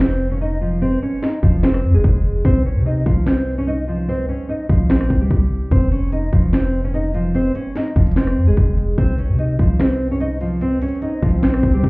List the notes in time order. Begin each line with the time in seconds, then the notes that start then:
Already playing: F1
0.00 C4 C5, finger snap, snare
0.31 C#4 C#5
0.41 D#4 D#5
0.61 F3 F4
0.82 C4 C5
1.02 C#4 C#5
1.22 D#4 D#5, finger snap, snare
1.43 F1 F3 F4, kick
1.63 C4 C5, finger snap, snare
1.74 cross-stick
1.84 F2
1.94 F1 G#3 G#4
2.04 F1, kick
2.45 C2 C4 C5, kick
2.66 C#4 C#5
2.76 C3
2.85 D#4 D#5
3.06 C2 F3 F4, kick
3.27 C4 C5, finger snap, snare
3.58 C#4 C#5
3.67 D#4 D#5
3.88 F3 F4
4.08 C4 C5
4.28 C#4 C#5
4.49 D#4 D#5
4.69 C2 F3 F4, kick
4.90 A#1 C4 C5, finger snap, snare
5.01 cross-stick
5.10 C2, kick
5.21 G3 G4
5.31 C2, kick
5.71 F1 C4 C5, kick, closed hi-hat
5.92 C#4 C#5, closed hi-hat
6.12 D#4 D#5, closed hi-hat
6.33 F1 F3 F4, kick, closed hi-hat
6.53 C4 C5, finger snap, snare, closed hi-hat
6.84 C#4 C#5
6.94 D#4 D#5, closed hi-hat
7.14 F3 F4, closed hi-hat
7.35 C4 C5, closed hi-hat
7.55 C#4 C#5, closed hi-hat
7.76 D#4 D#5, finger snap, snare, closed hi-hat
7.96 F1 F3 F4, kick, closed hi-hat
8.01 closed hi-hat
8.07 closed hi-hat
8.11 closed hi-hat
8.16 C4 C5, finger snap, snare, closed hi-hat
8.27 cross-stick
8.37 F2
8.47 F1 G#3 G#4
8.57 F1, kick, closed hi-hat
8.78 closed hi-hat
8.98 C2 C4 C5, kick, closed hi-hat, swell
9.18 C#4 C#5, closed hi-hat
9.29 C3
9.39 D#4 D#5, closed hi-hat
9.59 C2 F3 F4, kick, closed hi-hat
9.80 C4 C5, finger snap, snare, closed hi-hat
10.11 C#4 C#5
10.20 D#4 D#5, closed hi-hat
10.41 F3 F4, closed hi-hat
10.61 C4 C5, closed hi-hat
10.82 C#4 C#5, closed hi-hat, open hi-hat
10.88 closed hi-hat
10.95 closed hi-hat
11.02 D#4 D#5, closed hi-hat
11.22 C2 F3 F4, kick, closed hi-hat
11.29 closed hi-hat
11.36 closed hi-hat
11.43 A#1 C4 C5, finger snap, snare, closed hi-hat
11.54 cross-stick
11.63 C2, kick
11.74 G3 G4
11.84 C2, kick, closed hi-hat